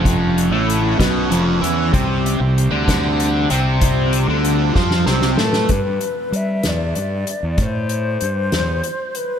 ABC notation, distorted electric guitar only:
X:1
M:6/8
L:1/16
Q:3/8=64
K:C
V:1 name="Distorted electric guitar" clef=bass
[F,,F,]3 [A,,A,]3 [B,,B,]2 [F,,F,]2 [E,E]2 | [C,C]3 C,2 [D,D]4- [D,D] [C,C]2- | [C,C]3 [D,D]3 [F,F]2 [C,C]2 [A,A]2 | [K:Gmix] z12 |
z12 |]